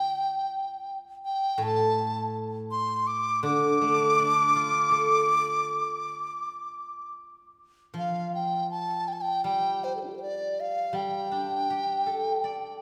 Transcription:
Already playing: G5
1.25 G5
1.58 A2
1.63 A5
2.71 C6
3.07 D6
3.43 D3 D6
3.81 A3
4.19 D4
4.56 F4
4.91 A4
7.94 F3
7.98 F5
8.35 G5
8.71 A5
9.08 G5
9.13 A5
9.21 G5
9.44 G3 G5
9.84 C5
9.96 A4
10.01 D4 C5
10.07 F4 G4
10.13 A4 C5
10.22 D5
10.60 F5
10.93 G3 G5
11.31 D4
11.70 G4
12.06 A4
12.44 D5

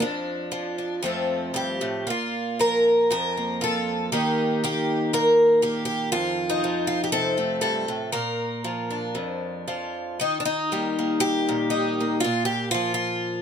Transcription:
0.00 F2 D4
0.52 F3
0.78 D4
1.03 F2 F3 A3 C4 A4
1.54 G2 G4
1.81 A2
2.07 A#2 F4
2.59 F3 A#4
3.11 F2 A#4
3.37 A#3
3.61 F3 A4
4.12 D#3 A#3 D#4 G4
4.64 A#3 G4
5.13 A#2 A#4
5.62 A#3 G4
5.85 G4
6.12 F2 F4
6.50 D#4
6.64 F3
6.87 F4
7.04 G4
7.12 C3 A4
7.37 A3
7.61 G2 A4
7.88 A2
8.12 A#2 A#4
8.64 F3
8.91 D4
9.15 F2
9.68 F3
10.20 D#3 D#4
10.40 D4
10.45 D#4
10.72 G3 A#3
10.99 A#3
11.20 G4
11.49 A#2
11.70 D#4
12.00 A#3
12.20 F4
12.24 A#2
12.45 G4
12.71 F3 F4
12.94 F4

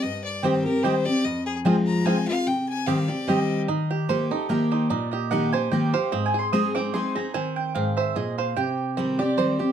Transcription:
0.02 G2 D#5
0.24 D5
0.42 D#3 G3 C4 G4 C5 D#5 G5
0.64 C4 G4 A#4
0.83 D#3 G3 C4 G4 C5 D#5 G5
1.05 C4 G4 D5
1.24 F2 D#5
1.46 G#4
1.65 F3 G#3 C4 F4 G#4 C5 G#5
1.86 A#5
2.05 F3 G#3 C4 F4 G#4 C5 G#5
2.28 C4 F4 F5
2.47 C3 G5
2.68 G#5
2.87 D#3 G3 C4 G4 D#5 F5 G5
3.08 C4 G4 D5
3.27 D#3 G3 C4 G4 D#5 G5
3.68 D#3 D#4
3.91 G4
4.09 D#3 A#3 D#4 G4 C5
4.31 D#4 G4 A4
4.49 D#3 A#3 D#4 G4 A#4
4.71 D#4 C5
4.90 A#2 D#4 D5
5.11 G4 D#5
5.31 D#3 A#3 D#4 G4 F#5
5.53 D#4 G4 C5 G#5
5.71 D#3 A#3 D#4 G4 G5
5.93 D#4 G4 C5 F5
6.12 G#2 C4 D#5
6.26 G#5
6.34 G#4
6.39 C6
6.52 G#3 C4 D#4 G#4 C5 D#6
6.75 C4 D#4 G#4 D6
6.94 G#3 C4 D#4 G#4 C6
7.15 C4 D#4 G#4 A#5
7.34 D#3 C4 G#5
7.56 G5
7.75 G#2 C4 F5
7.97 C5 E5
8.15 A#2 G#4 D#5
8.38 C5 F5
8.56 C3 G4 G5
8.97 D#3 G3 C4 G4
9.19 C4 G4 D5
9.37 D#3 G3 C4 G4 C5
9.59 C4 G4

